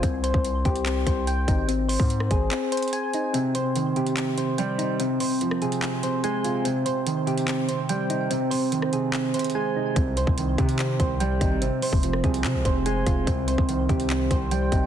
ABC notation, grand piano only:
X:1
M:4/4
L:1/8
Q:1/4=145
K:Cm
V:1 name="Grand piano" clef=bass
z8 | z8 | C, C, E, C,2 C, G, C, | C, C, F, C,2 C, A, C, |
C, C, E, C,2 C, G, C, | C, C, E, C,2 C, A, C, | C, C, E, C,2 C, G, C, | C, C, F, C,2 C, A, C, |
C, C, E, C,2 C, G, C, |]